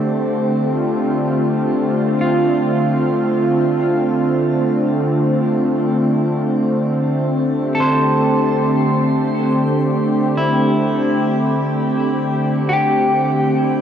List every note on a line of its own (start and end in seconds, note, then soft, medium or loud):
0.00 13.81 D3 medium
0.00 13.81 A3 medium
0.00 13.81 C4 medium
0.00 1.90 G4 medium
0.59 7.03 F4 medium
2.21 3.43 F4 medium
7.52 13.81 G4 medium
7.75 8.97 A4 medium
7.80 8.99 C5 soft
10.37 11.59 E4 medium
12.69 13.81 G4 medium